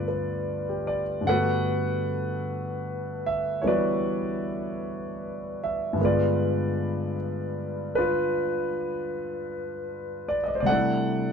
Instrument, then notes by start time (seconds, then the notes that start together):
grand piano
Already playing: G2 D3 A3 B3 F4 B4 D5
0.08 B4
0.69 G4
0.87 D5
1.21 G2 D3
1.27 A3 B3 A4 B4 F#5
1.31 F#4
3.26 E5
3.62 E3 G3 B3 D4 C#5
3.67 F#4 B4 D5
5.64 E5
5.93 G2 D3
5.99 G#3 B3
6.04 F4 B4 D5
7.95 D4 F4 B4
10.29 D5
10.44 D#5
10.48 D5
10.55 C5
10.60 C3 G3 D5
10.66 A3 A4 D5 F#5
10.72 D4 E4